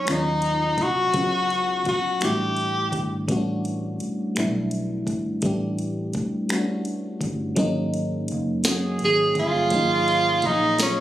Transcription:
Already playing: F#3 G#3 B3 C#4 D#4
0.05 D#2 F#3 G#3 B3 C#4, finger snap, closed hi-hat
0.09 D#4 F4
0.42 closed hi-hat
0.78 C2, kick, closed hi-hat
0.83 F#4
1.13 C#2 F#3 G#3 B3 C#4, kick, closed hi-hat
1.17 F4
1.23 F#4
1.50 closed hi-hat
1.85 F#4, muted fingered electric bass stroke, kick, closed hi-hat
2.20 A1 G3 A3 B3 D4 E4 G4, finger snap, closed hi-hat
2.57 closed hi-hat
2.92 G#1, kick, closed hi-hat
3.28 A1 G3 A3 B3 C#4, kick, closed hi-hat
3.32 F#4
3.37 D4
3.65 closed hi-hat
4.00 muted fingered electric bass stroke, closed hi-hat
4.35 B1 G3 A3 B3 D4, finger snap, closed hi-hat
4.39 E4
4.71 closed hi-hat
5.07 G#1, kick, closed hi-hat
5.42 A1 G3 A3 B3 D4, kick, closed hi-hat
5.46 G4
5.79 closed hi-hat
6.13 muted fingered electric bass stroke, kick, closed hi-hat
6.49 G3 A3 B3 C#4, finger snap, closed hi-hat
6.53 F#4
6.59 D4
6.85 closed hi-hat
7.21 G1, kick, closed hi-hat
7.55 G#1 F#3 G#3 A#3 C#4 D#4, kick, closed hi-hat
7.94 closed hi-hat
8.28 F#1, closed hi-hat
8.64 D#3 F#3 G#3 A#3 C#4 G#4, snare, closed hi-hat
8.68 F#4
8.99 G#1, closed hi-hat
9.05 G#4
9.35 G1, kick, closed hi-hat
9.39 F4
9.70 G#1 F#3 G#3 A#3 C#4, kick, closed hi-hat
9.75 D#4
10.08 closed hi-hat
10.42 A#1, kick, closed hi-hat
10.46 D#4
10.78 F#3 G#3 A#3 C#4, snare, closed hi-hat
10.82 C#4 F4

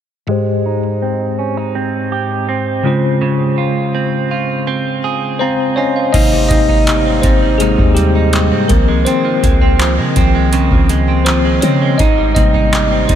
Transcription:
0.27 G#2 G#3 G4
0.31 C5
0.66 D#4
1.02 C4
1.39 C#4
1.57 D#4
1.75 C4
2.12 G4
2.49 C4
2.83 C#3 G#3 F4
2.87 C5
3.21 C#3
3.58 F4
3.95 C4
4.31 F4
4.67 C4
5.04 G#4
5.39 C4 C5 F5 A#5
5.76 C#4 F4 C#5 D#5 G#5
5.96 C5 F5
6.13 G#1 G#2 C3 D#3 A#3 D#4 D#5, kick, closed hi-hat, crash
6.32 G3
6.49 G#1 C4 D#4 D#5, kick, closed hi-hat
6.69 D#4, kick
6.87 G3, clap, closed hi-hat
7.05 C4
7.22 G#1 C4 D#4 C5, kick, closed hi-hat
7.42 C4
7.58 G#2 C3 G#3 A#3 D#4 G4 G#4, closed hi-hat
7.78 D#2 G3, kick
7.95 G3 C4 G4, closed hi-hat
8.15 D#4
8.33 G3, clap, closed hi-hat
8.52 G#2 C4
8.68 C2 D#3 F3 A#3 C4 A#4, kick, closed hi-hat
8.88 G#3
9.05 C4 C5, closed hi-hat
9.25 F3
9.43 C#2 G#3, kick, closed hi-hat
9.61 C4, kick
9.80 F3, clap, closed hi-hat
9.98 C#3 G#3
10.16 C2 D#3 F3 C4, kick, closed hi-hat
10.35 G#3
10.53 C#3 C4, closed hi-hat
10.71 C#2 F3, kick
10.89 G#3, closed hi-hat
11.08 C4
11.25 F3 C4 C5, clap, closed hi-hat
11.45 G#3
11.61 C#3 C4 C#4 C#5, closed hi-hat
11.81 G#3
11.98 G#1 G#2 D#4 D#5, kick, closed hi-hat
12.18 G3
12.35 G#1 C3 G3 A#3 C4 D#4 D#5, kick, closed hi-hat
12.54 D#4, kick
12.73 G3, clap, closed hi-hat
12.91 C4
13.08 G#1 C4 D#4 C5, kick, closed hi-hat

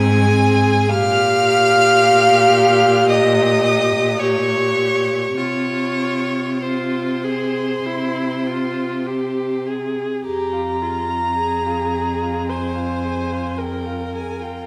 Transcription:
Already playing: G#2 C4 G#4 G#5
0.31 C4
0.90 A#2 G4 F5 F6
3.09 D#5 D#6
4.19 G4 C#5 C#6
5.37 C3 F4 C#5 C#6
6.60 F4 C5 C6
7.24 G#4
7.86 C3 E4
8.47 F4
9.07 G4
9.67 G#4
10.25 F2 G4 G#4 A#5
10.53 F4
10.81 F4 G#4
11.09 F4
11.38 G#4
11.66 F4
11.94 G#4
12.22 F4
12.49 G#4 C5 G#5
12.76 F4
13.04 G#4
13.32 F4
13.58 G#4 A#4 G5
13.86 F4
14.14 G#4 G#5
14.40 F4 G5

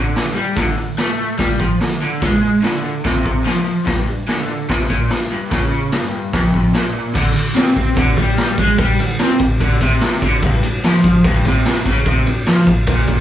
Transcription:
Already playing: D3
0.16 snare, open hi-hat
0.34 G3
0.56 D3, kick, snare, open hi-hat
0.78 D3
0.98 A3, snare, open hi-hat
1.38 G3, kick, snare, open hi-hat
1.60 F3, kick
1.80 D3, snare, open hi-hat
2.02 D3
2.21 G#3, kick, snare, open hi-hat
2.62 D3, snare, open hi-hat
3.05 C3, kick, snare, open hi-hat
3.26 kick
3.45 F3, snare, open hi-hat
3.85 G2, kick, snare, open hi-hat
4.09 G2
4.28 D3, snare, open hi-hat
4.69 C3, kick, snare, open hi-hat
4.90 A#2, kick
5.10 G2, snare, open hi-hat
5.31 G2
5.50 C#3, kick, snare, open hi-hat
5.92 G2, snare, open hi-hat
6.33 F2, kick, snare, open hi-hat
6.54 kick
6.73 A#2, snare, open hi-hat
7.14 D3, kick, crash
7.34 D3, ride
7.55 C4, snare, ride
7.76 kick, ride
7.96 D3, kick, ride
8.17 G3, kick, ride
8.38 snare, ride
8.58 G#3, kick, ride
8.78 G3, kick, ride
8.99 D3, ride
9.19 C4, snare, ride
9.39 muted overdriven electric guitar stroke, kick, ride
9.60 D3, kick, ride
9.81 C3, kick, ride
10.01 snare, ride
10.22 D3, kick, ride
10.42 G2, kick, ride
10.63 G2, ride
10.84 F3, snare, ride
11.04 kick, ride
11.24 G2, kick, ride
11.45 C3, kick, ride
11.65 snare, ride
11.86 C#3, kick, ride
12.06 C3, kick, ride
12.26 G2, ride
12.46 F3, snare, ride
12.67 muted overdriven electric guitar stroke, kick, ride
12.87 A#2, kick, ride
13.07 kick, ride

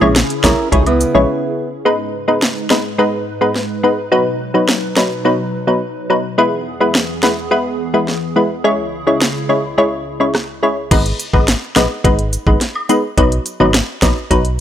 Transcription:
Already playing: C#3 C#4 E4 G#4
0.01 A#1 G#3 C#4 E4 C#5, high woodblock
0.16 snare, closed hi-hat
0.30 closed hi-hat
0.44 B1 G#3 C#4 E4 A#4 C#5, kick, snare, closed hi-hat, cabasa, high woodblock
0.72 C#2 G#3 C#4 D#4 E4 G#4 C#5, kick, closed hi-hat
0.86 B3 E4, closed hi-hat, high woodblock
1.01 closed hi-hat, cabasa
1.14 A#1 G#3 C#4 E4 C#5
1.85 G#2 G#3 B3 D#4 B4
2.28 G#3 B3 D#4 B4
2.42 snare
2.70 G#3 B3 D#4 B4, snare
2.98 G#3 B3 D#4 B4
3.41 G#3 B3 D#4 B4
3.56 snare
3.83 G#3 B3 D#4 B4
4.12 B2 F#3 B3 D#4 B4
4.54 F#3 B3 D#4 B4
4.69 snare
4.97 F#3 B3 D#4 B4, snare
5.25 F#3 B3 D#4 B4
5.67 F#3 B3 D#4 B4
6.10 F#3 B3 D#4 B4
6.38 E2 E3 G#3 B3 E4 G#4 B4
6.80 G#3 B3 E4 B4
6.95 snare
7.23 G#3 B3 E4 B4, snare
7.51 G#3 B3 E4 B4
7.94 G#3 B3 E4 B4
8.08 snare
8.36 G#3 B3 E4 B4
8.64 C#2 C#3 G#3 C#4 E4 G#4 C#5
9.07 G#3 C#4 E4 C#5
9.22 snare
9.49 G#3 C#4 E4 C#5
9.78 G#3 C#4 E4 C#5
10.20 G#3 C#4 E4 C#5
10.35 cross-stick, snare
10.63 G#3 C#4 E4 C#5
10.91 G#1 G#3 B3 D#4 B4, kick, closed hi-hat, crash, high woodblock
11.06 closed hi-hat
11.20 closed hi-hat, cabasa
11.33 G#1 G#3 B3 D#4 B4, kick, high woodblock
11.48 snare, closed hi-hat
11.76 A#1 G#3 B3 D#4 B4, snare, closed hi-hat, cabasa, high woodblock
12.04 G#1 G#3 B3 D#4 B4, kick, closed hi-hat
12.19 closed hi-hat
12.33 closed hi-hat, cabasa
12.47 G#1 G#3 B3 D#4 B4, kick
12.61 snare, closed hi-hat
12.75 high woodblock
12.89 G#3 B3 D#4 B4, closed hi-hat, cabasa
13.17 B1 F#3 B3 D#4 B4, kick, closed hi-hat, high woodblock
13.32 closed hi-hat
13.46 closed hi-hat, cabasa
13.60 G#1 F#3 B3 D#4 B4, high woodblock
13.74 snare, closed hi-hat
14.02 A#1 F#3 B3 D#4 B4, kick, snare, closed hi-hat, cabasa, high woodblock
14.31 B1 F#3 B3 D#4 B4, kick, closed hi-hat
14.45 closed hi-hat

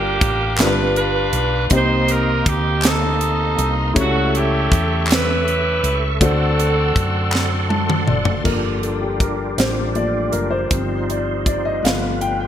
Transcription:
Already playing: G1 G2 G3 A#3 D4 F4 G4 A#4 F5 D6
0.21 A1, kick, closed hi-hat
0.58 G1 G2 G3 D4 F4 A#4 B4, snare, clap, closed hi-hat
0.62 B4
0.67 B4
0.96 D4 F4 B4, closed hi-hat
1.33 B1, closed hi-hat
1.70 C2 C3 A#3 D#4 G4 C5 D#5 C6, kick, closed hi-hat
1.75 D#4 G4 C5
2.08 A#4, closed hi-hat
2.46 D2 G4, kick, closed hi-hat
2.82 snare, clap, closed hi-hat
2.87 D#4 A4
3.21 closed hi-hat
3.58 C2, closed hi-hat
3.94 C#2 C#3 G3 A3 E4 A4 C#5 E5 C#6, kick, closed hi-hat
4.00 A3 F#4
4.35 E4 G4, closed hi-hat
4.71 E2, kick, closed hi-hat
5.07 clap
5.11 E4 G4 B4, snare, closed hi-hat
5.48 closed hi-hat
5.83 C#2, closed hi-hat
6.20 D2 D3 A3 C4 D4 F#4 C5 D5 F#5 C6, kick, closed hi-hat
6.24 F#4 A4
6.59 closed hi-hat
6.96 F#2, kick, closed hi-hat
7.32 snare, clap
7.69 A5, high tom
7.90 mid tom
8.07 F#1 D5, mid tom
8.25 floor tom
8.44 G1 F3 G3 A#3 D4 F4 G4 A4 A#4, kick, crash
8.81 A4, closed hi-hat
9.01 G4
9.20 A#4, kick, closed hi-hat
9.58 A1 C5, snare, closed hi-hat
9.95 F3 A3 A#3 D5, closed hi-hat
10.32 F#1 A#4, closed hi-hat
10.51 C5
10.71 G1 F3 G3 C4 D#4 C5, kick, closed hi-hat
11.10 D5, closed hi-hat
11.46 D5, kick, closed hi-hat
11.65 D#5
11.83 G1 F3 G3 A3 B3 F4 B4 F5, snare, closed hi-hat
12.21 G5, closed hi-hat
12.40 G5

